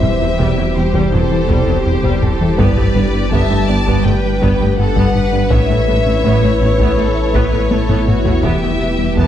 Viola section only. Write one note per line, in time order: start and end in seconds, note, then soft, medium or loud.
0.00 0.09 G3 medium
0.00 5.47 G4 medium
0.20 0.28 E3 medium
0.38 0.56 G3 medium
0.57 0.65 F#3 medium
0.75 0.83 G3 soft
0.93 1.11 G3 medium
1.12 1.19 F#3 medium
1.49 1.66 G3 medium
1.68 1.75 F#3 medium
1.86 1.93 G3 medium
2.04 2.21 G3 medium
2.41 2.48 G3 medium
2.58 2.75 B3 medium
2.77 2.84 A3 soft
2.95 3.02 B3 medium
3.13 3.21 G3 medium
3.32 3.49 B3 medium
3.50 3.57 A3 soft
3.69 3.76 B3 medium
3.86 4.04 B3 medium
4.05 4.13 A3 medium
4.42 4.59 B3 medium
4.61 4.68 A3 medium
4.79 4.86 B3 medium
4.97 5.14 B3 medium
5.35 5.42 B3 medium
5.52 5.69 B3 medium
5.52 8.40 E4 medium
5.70 5.77 A3 medium
5.88 5.95 B3 medium
6.07 6.14 A3 medium
6.24 6.41 B3 medium
6.43 6.50 A3 medium
6.62 6.69 B3 medium
6.81 6.97 B3 medium
6.98 7.06 A3 medium
7.34 7.51 B3 medium
7.53 7.61 A3 medium
7.71 7.78 B3 medium
7.89 8.06 B3 medium
8.25 8.32 B3 medium
8.43 8.60 B3 medium
8.43 9.27 G4 medium
8.62 8.70 A3 medium
8.80 8.87 B3 medium
8.99 9.06 G3 medium
9.17 9.27 B3 medium